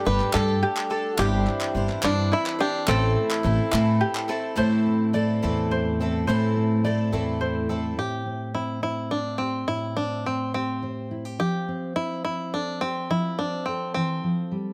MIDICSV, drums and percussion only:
0, 0, Header, 1, 2, 480
1, 0, Start_track
1, 0, Key_signature, 0, "minor"
1, 0, Tempo, 564440
1, 1012, Time_signature, 6, 3, 24, 8
1, 5334, Tempo, 569260
1, 12466, End_track
2, 0, Start_track
2, 0, Title_t, "Drums"
2, 170, Note_on_c, 9, 39, 28
2, 255, Note_off_c, 9, 39, 0
2, 284, Note_on_c, 9, 39, 93
2, 369, Note_off_c, 9, 39, 0
2, 652, Note_on_c, 9, 39, 79
2, 737, Note_off_c, 9, 39, 0
2, 1008, Note_on_c, 9, 39, 97
2, 1093, Note_off_c, 9, 39, 0
2, 1250, Note_on_c, 9, 39, 32
2, 1335, Note_off_c, 9, 39, 0
2, 1367, Note_on_c, 9, 39, 70
2, 1452, Note_off_c, 9, 39, 0
2, 1610, Note_on_c, 9, 39, 34
2, 1695, Note_off_c, 9, 39, 0
2, 1723, Note_on_c, 9, 39, 97
2, 1808, Note_off_c, 9, 39, 0
2, 2093, Note_on_c, 9, 39, 73
2, 2178, Note_off_c, 9, 39, 0
2, 2446, Note_on_c, 9, 39, 85
2, 2531, Note_off_c, 9, 39, 0
2, 2812, Note_on_c, 9, 39, 81
2, 2897, Note_off_c, 9, 39, 0
2, 2926, Note_on_c, 9, 39, 30
2, 3012, Note_off_c, 9, 39, 0
2, 3166, Note_on_c, 9, 39, 99
2, 3252, Note_off_c, 9, 39, 0
2, 3531, Note_on_c, 9, 39, 80
2, 3616, Note_off_c, 9, 39, 0
2, 3654, Note_on_c, 9, 39, 30
2, 3739, Note_off_c, 9, 39, 0
2, 12466, End_track
0, 0, End_of_file